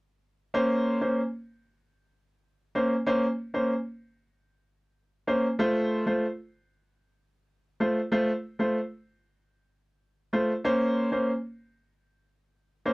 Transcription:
grand piano
0.54 A#3 C#4 C5
1.01 A#3 C#4 C5
2.75 A#3 C#4 C5
3.06 A#3 C#4 C5
3.54 A#3 C#4 C5
5.27 A#3 C#4 C5
5.59 A3 F4 C5
6.06 A3 F4 C5
7.80 A3 F4 C5
8.12 A3 F4 C5
8.59 A3 F4 C5
10.33 A3 F4 C5
10.64 A#3 C#4 C5
11.12 A#3 C#4 C5
12.86 A#3 C#4 C5

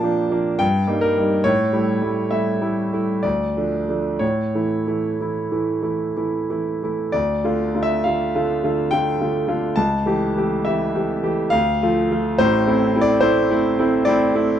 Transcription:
grand piano
Already playing: A#2 F3 A#3 D4 G5 A5
0.03 F3 A#3 D4
0.30 F3 A#3 D4
0.59 G2 G5
0.87 G3 A#3 D#4
1.01 A#4
1.17 G3 A#3 D#4
1.44 A2 C#5
1.73 G3 A3 E4
2.02 G3 A3 E4
2.31 G3 A3 E4 E5
2.61 G3 A3 E4
2.93 G3 A3 E4
3.23 D2 D5
3.57 F3 A3 D4
3.88 F3 A3 D4
4.19 A2 C#5
4.55 E3 A3 E4
4.87 E3 A3 E4
5.20 E3 A3 E4
5.52 E3 A3 E4
5.82 E3 A3 E4
6.17 E3 A3 E4
6.50 E3 A3 E4
6.83 E3 A3 E4
7.12 D2 D5
7.44 D3 A3 F4
7.75 D3 A3 F4
7.83 E5
8.04 D3 A3 F4 F5
8.35 D3 A3 F4
8.64 D3 A3 F4
8.91 D3 A3 F4 G5
9.20 D3 A3 F4
9.48 D3 A3 F4
9.76 C#2 A5
10.06 E3 A3 G4
10.36 E3 A3 G4
10.65 E3 A3 G4 E5
10.95 E3 A3 G4
11.23 E3 A3 G4
11.50 D2 F5
11.83 F3 A3 F4
12.11 F3 A3 F4
12.38 A1 A2 C5
12.67 A3 C4 E4
12.96 A3 C4 E4
13.01 D5
13.21 A3 C4 E4 C5
13.50 A3 C4 E4
13.79 A3 C4 E4
14.05 A3 C4 E4 D5
14.35 A3 C4 E4

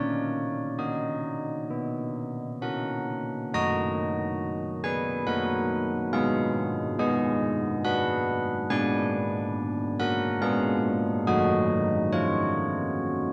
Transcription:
church bells
Already playing: A#3 A#4 D5
0.78 D#4 A#4 D#5
1.70 B3
2.62 C#4 A#4 F#5
3.54 F#3 D#4 F#4 D#5 A#5
4.84 B4 G#5
5.27 F#3 D#4 F#4 A#4 F#5
6.13 G#3 B3 D#4 G#4 F5
6.99 G#3 B3 D#4 G#4 D#5
7.85 B4 F#5
8.70 G#3 A#3 D4 D5 G#5
10.00 A#4 F#5
10.41 G#3 A#3 D4 G#4 F5
11.27 F#3 A#3 D#4 F#4 D#5
12.13 F4 C#5

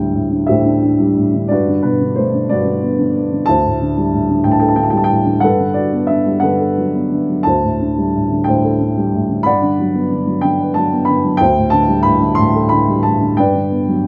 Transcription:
upright piano
Already playing: D2 A2 D3 G3 C5 G5
0.13 A2
0.31 D3
0.47 A2 G4 C5 E5
0.66 D4
0.83 D3
1.00 G3
1.16 A2
1.34 D3
1.48 G2 F#4 B4 D5
1.68 D3
1.83 B2 B4
2.01 D3
2.15 A3 C5
2.34 D3
2.49 G2 F#4 B4 D5
2.65 D3
2.83 B3
2.99 D3
3.16 B3
3.32 D3
3.46 D2 C5 A5
3.65 A2
3.81 D3
3.98 G3
4.12 A2
4.29 D3
4.44 A2 G5
4.52 A5
4.60 A4 G5
4.68 A5
4.76 D3 G5
4.83 A5
4.90 G3 G5
4.97 A5
5.04 G5
5.10 A2
5.26 D3
5.40 G2 A4 B4 F#5
5.59 D3
5.74 F#4 D5
5.93 B3
6.07 D3 E5
6.26 G3
6.40 D3 A4 B4 F#5
6.60 A4
6.78 F#3
6.95 B3
7.12 D3
7.29 F#3
7.43 D2 C5 A5
7.64 A2
7.81 D3
7.98 G3
8.16 A2
8.31 D3
8.44 A2 C5 G5
8.64 A4
8.80 D3
8.97 G3
9.14 A2
9.30 D3
9.43 G2 D5 F#5 B5
9.62 D3
9.79 F#3
9.95 B3
10.11 D3
10.27 F#3
10.41 D3 G5
10.61 B4
10.74 F#3 A5
10.93 B3
11.05 D3 B5
11.25 F#3
11.37 D2 C5 G5
11.57 A2
11.70 D3 A5
11.88 G3
12.03 A2 B5
12.21 D3
12.35 A2 C6
12.55 A4
12.69 D3 B5
12.88 G3
13.03 A2 A5
13.21 D3
13.37 G2 B4 D5 G5
13.55 D3
13.72 B3
13.89 F#3

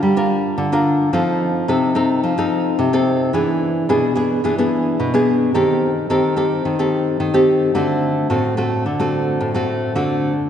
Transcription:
nylon-string guitar
0.03 G3
0.16 D4 F4 A#4
0.58 D3
0.72 D4 F4 A#4
1.13 F3 C4 D#4 A4
1.68 C3 C4 D#4 A4
1.95 C4 D#4 A4
2.24 F3
2.38 C4 D#4 A4
2.79 C3
2.93 C4 D#4 A4
3.33 E3 B3 D4 G#4
3.89 B2 B3 D4 G#4
4.15 B3 D4 G#4
4.44 E3 B3 D4 G#4
4.58 B3 D4 G#4
5.00 B2
5.14 B3 D4 G#4
5.54 D#3 C4 G4 A4
6.10 D#3 C4 G4 A4
6.36 C4 G4 A4
6.65 D#3
6.79 C4 G4 A4
7.20 D#3
7.34 C4 G4 A4
7.75 D3 A3 C4 F#4
8.30 A2 A3 C4 F#4
8.57 A3 C4 F#4
8.86 D3
9.00 A3 C4 F#4
9.41 A2
9.54 A3 C4 F#4
9.95 D3 A3 C4 F#4

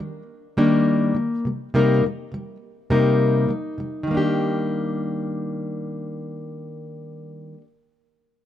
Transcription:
steel-string acoustic guitar
0.00 D#3 G3
0.57 D#3 G3 A#3 D4 A#4
1.14 D#3 G3
1.45 C3 G3
1.74 C3 G3 A#3 D#4 A#4
2.04 C3
2.32 C3 G3
2.90 C3 G3 A#3 D#4 A#4
3.49 C3 G3
3.78 C3 G3
4.03 D#3 G3
4.11 A#3 D4
4.17 G4

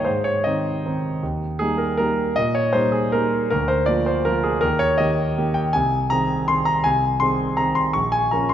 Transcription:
grand piano
Already playing: G2 D#3 A#3 D#4 C#5 D#5 F5
0.05 G#2 C5
0.24 C#5
0.44 D#3 C4 D#4 D#5
0.86 D#3 C4 D#4
1.23 D#2
1.59 G3 A#3 D#4 G#4
1.78 A#4
1.97 G3 A#3 D#4 A#4
2.36 A#2 D#5
2.55 C#5
2.73 G3 A#3 D#4 C5
2.92 G#4
3.12 G3 A#3 D#4 A#4
3.50 D2 A#4
3.68 C5
3.86 F3 A#3 F4 D5
4.06 C5
4.25 F3 A#3 F4 A#4
4.43 G#4
4.61 D#2 A#4
4.79 C#5
4.98 D#3 A#3 G4 D#5
5.38 D#3 A#3 G4
5.54 G5
5.73 C2 G#5
6.10 D#3 C4 G#4 A#5
6.48 D#3 C4 G#4 C6
6.65 A#5
6.84 C2 G#5
7.20 D#3 C4 G#4 C6
7.57 D#3 C4 G#4 A#5
7.75 C6
7.93 A#1 C#6
8.12 G#5
8.31 F3 C#4 A#4 A#5
8.49 C6

